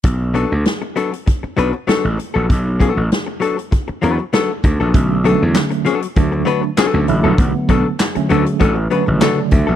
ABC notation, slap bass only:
X:1
M:4/4
L:1/16
Q:1/4=98
K:Bm
V:1 name="Slap bass" clef=bass
B,,,3 D,, z6 B,,, z2 A,,, z ^A,,, | B,,,3 A,,, z6 E,, z3 D,, ^A,,, | B,,,3 E,, z4 D,,2 z3 D,, A,,, ^A,,, | B,,, z B,,, z3 D,, z A,,,2 z A,,, z2 D,, ^A,,, |]